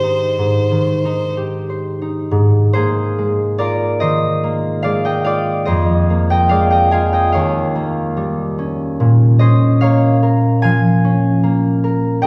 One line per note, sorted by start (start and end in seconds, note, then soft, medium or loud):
0.00 0.37 G#2 soft
0.00 0.70 D#3 soft
0.00 1.04 D#4 soft
0.00 1.36 G4 soft
0.00 1.27 G#4 soft
0.00 1.33 C5 soft
0.00 1.68 C5 soft
0.38 2.30 G#2 soft
0.71 2.34 D#3 soft
1.05 2.00 D#4 soft
1.37 2.34 G4 soft
1.70 2.72 C5 soft
2.02 5.92 D#4 soft
2.31 5.70 G#2 soft
2.73 4.42 A#3 soft
2.73 6.65 G#4 soft
2.73 4.00 C5 medium
3.19 4.84 G#3 soft
3.58 5.25 F4 soft
3.58 7.49 A#4 soft
3.58 4.30 D5 medium
4.00 5.70 D#3 soft
4.00 5.65 C5 soft
4.00 5.04 D#5 medium
4.43 6.09 A#3 soft
4.83 6.50 G#3 soft
4.83 5.25 D5 medium
4.83 5.18 F5 medium
5.05 5.64 D#5 soft
5.05 5.40 G5 medium
5.24 6.92 F4 soft
5.24 5.70 D5 soft
5.24 6.48 F5 medium
5.65 7.38 F2 soft
5.65 9.03 C5 soft
5.65 6.30 D#5 medium
6.10 7.74 A#3 soft
6.30 6.71 D#5 soft
6.30 6.66 G5 medium
6.49 7.38 G#3 soft
6.49 7.38 D5 soft
6.49 6.86 F5 medium
6.70 7.13 D#5 soft
6.70 7.07 G5 medium
6.91 10.83 F4 soft
6.91 7.31 F5 medium
6.91 7.37 G#5 medium
7.13 9.04 D#5 soft
7.13 7.49 G5 medium
7.32 9.04 D#2 soft
7.32 9.81 C#5 soft
7.32 9.80 F5 medium
7.75 9.82 A#3 soft
8.17 9.03 G3 soft
8.59 9.40 C#4 soft
9.00 12.27 A#2 soft
9.39 11.03 C#4 soft
9.39 12.27 C5 soft
9.39 10.11 D#5 medium
9.81 11.42 A#3 soft
9.81 12.26 C#5 soft
9.81 10.62 F5 medium
10.23 11.83 A#4 soft
10.62 12.27 F3 soft
10.62 12.27 F5 medium
10.62 12.27 G#5 medium
11.04 12.27 C#4 soft
11.43 12.27 A#3 soft
11.84 12.27 A#4 soft
12.22 12.27 G#2 soft
12.22 12.27 D#5 medium
12.22 12.27 G5 medium